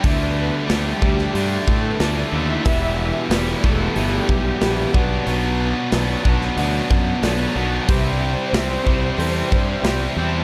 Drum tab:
HH |o---o---o---o---|o---o---o---o---|o---o---o---o---|o---o---o---o---|
SD |----o--o----o---|----o-------o---|----o--o----o---|----o-------o---|
BD |o-----o---o-----|o-----o---o---o-|------o---o-----|o-----o---o-----|